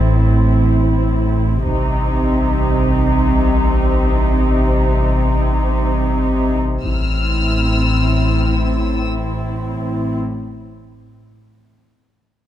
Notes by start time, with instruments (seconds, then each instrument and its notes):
Already playing: sub bass A1, double bass section A1, cello section A2, viola section C4 E4
1.66 sub bass A1, double bass section C2, cello section C3, viola section C4 D#4, taiko
6.83 double bass section A1, sub bass A1, cello section A2, viola section C4 E4, violin section E6 F6, taiko